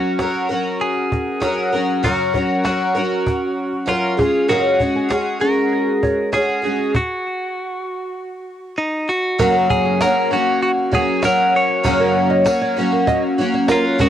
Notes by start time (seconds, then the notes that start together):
Already playing: F#3 C#4 F#4 A#4
0.19 F#3 C#4 F#4 A#4, cajon slap
0.35 cajon slap
0.49 F#3 C#4 F#4 A#4
0.66 cajon slap
0.81 G#4, cajon slap
0.97 cajon slap
1.12 cajon bass
1.27 cajon slap
1.40 F#3 C#4 F#4 A#4, cajon slap
1.57 cajon slap
1.72 F#3 C#4 F#4 A#4
1.88 cajon slap
2.03 F#2 C#3 F#3 C#4 F#4 A#4, cajon bass
2.33 F#3 C#4 F#4 A#4, cajon bass
2.63 F#3 C#4 F#4 A#4, cajon slap
2.81 cajon slap
2.95 F#3 C#4 F#4 A#4
3.12 cajon slap
3.26 cajon bass
3.73 cajon slap
3.86 F#3 C#4 F4 A#4, cajon slap
4.03 cajon slap
4.17 G#3 C#4 G#4, cajon bass
4.48 F#2 C#3 G#3 C#4 F#4 G#4 A#4, cajon slap
4.65 cajon slap
4.79 G#3 C#4 F#4 G#4, cajon bass
4.95 G#4
5.09 G#3 C#4 F#4 G#4, cajon slap
5.26 cajon slap
5.40 G#3 C#4 F#4 G#4 A#4
5.57 cajon slap
5.73 cajon slap
5.88 cajon slap
6.03 C#5, cajon bass
6.18 cajon slap
6.32 G#3 C#4 F#4 G#4, cajon slap
6.49 cajon slap
6.62 G#3 C#4 F#4 G#4
6.79 cajon slap
6.95 F#4, cajon bass, cajon slap
8.78 D#4
9.09 F#4
9.39 F#2 C#3 F#3 A#3 C#4 F#4 A#4, cajon bass
9.70 G#4, cajon bass
9.85 G#4, cajon slap
10.00 F#3 A#3 C#4 F#4 A#4, cajon slap, tambourine
10.16 cajon slap
10.31 F#3 A#3 C#4 F#4
10.47 cajon slap
10.63 F#4, cajon slap
10.78 cajon slap
10.92 F#3 A#3 C#4 F#4 G#4 C#5, cajon bass
11.08 cajon slap
11.22 F#3 A#3 C#4 F#4 A#4, cajon slap, tambourine
11.39 cajon slap
11.54 C#5, cajon slap
11.69 cajon slap
11.83 F#2 C#3 F#3 A#3 C#4 F#4, cajon bass
12.00 A#4, cajon slap
12.15 cajon slap
12.30 D#5, cajon slap
12.44 F#3 A#3 C#4 F#4, cajon slap, tambourine
12.62 C#5, cajon slap
12.76 F#3 A#3 C#4 F#4
12.92 A#4, cajon slap
13.07 D#5, cajon bass
13.23 cajon slap
13.38 F#3 A#3 C#4 F#4, cajon slap
13.53 C#5, cajon slap
13.68 F#3 A#3 C#4 F4 A#4, cajon slap, tambourine
13.84 cajon slap
13.98 F#2 C#3 G#3 C#4 F#4 G#4 A#4, cajon bass